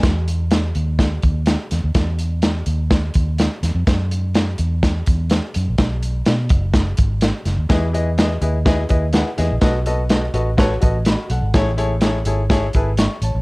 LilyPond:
<<
  \new Staff \with { instrumentName = "Grand piano" } { \time 4/4 \key e \major \tempo 4 = 125 << { <b' gis''>8 r2. r8 | r1 | r1 | r1 |
r1 | r2. <fis' dis'' b''>8 <a' fis''>8~ | <a' fis''>8 r2 r8 <e'' cis'''>8 <cis'' a''>8 | } \\ { r1 | r1 | r1 | r1 |
<e' gis' b' dis''>8 <e' gis' b' dis''>8 <e' gis' b' dis''>8 <e' gis' b' dis''>8 <e' gis' b' dis''>8 <e' gis' b' dis''>8 <e' gis' b' fis''>8 <e' gis' b' dis''>8 | <fis' a' b' dis''>8 <fis' a' b' dis''>8 <fis' a' b' dis''>8 <fis' a' b' dis''>8 <fis' a' b' cis''>8 <fis' a' b' dis''>8 r4 | <e' gis' a' cis''>8 <e' gis' a' cis''>8 <e' gis' a' cis''>8 <e' gis' a' cis''>8 <e' gis' a' cis''>8 <e' gis' a' b'>8 r4 | } >> }
  \new Staff \with { instrumentName = "Grand piano" } { \clef bass \time 4/4 \key e \major r1 | r1 | r1 | r1 |
e4. r2 r8 | b,4. r2 r8 | a,4. r2 r8 | }
  \new Staff \with { instrumentName = "Fingered electric bass" } { \clef bass \time 4/4 \key e \major e,4. dis,4 dis,8. r16 e,16 dis,16 | r4. dis,4 dis,8. r16 e,16 eis,16 | fis,4. e,4 e,8. r16 fis,16 ais,,16 | b,,4 b,8 fis,,4 gis,,8. r16 fis,,16 dis,16 |
e,4. dis,4 dis,8. r16 e,16 ais,,16 | b,,4. a,,4 a,,8. r16 b,,16 gis,,16 | a,,4. gis,,4 gis,,8. r16 a,,16 ais,,16 | }
  \new DrumStaff \with { instrumentName = "Drums" } \drummode { \time 4/4 <hh bd sn>8 hh8 <hh sn>8 hh8 <hh bd sn>8 <hh bd>8 <hh sn>8 <hh sn>8 | <hh bd sn>8 hh8 <hh sn>8 hh8 <hh bd sn>8 <hh bd>8 <hh sn>8 <hh sn>8 | <hh bd sn>8 hh8 <hh sn>8 hh8 <hh bd sn>8 <hh bd>8 <hh sn>8 hh8 | <hh bd sn>8 hh8 <hh sn>8 <hh bd>8 <hh bd sn>8 <hh bd>8 <hh sn>8 <hh sn>8 |
<hh bd sn>8 hh8 <hh sn>8 hh8 <hh bd sn>8 <hh bd>8 <hh sn>8 <hh sn>8 | <hh bd sn>8 hh8 <hh sn>8 hh8 <hh bd sn>8 <hh bd>8 <hh sn>8 hh8 | <hh bd sn>8 hh8 <hh sn>8 hh8 <hh bd sn>8 <hh bd>8 <hh sn>8 hh8 | }
>>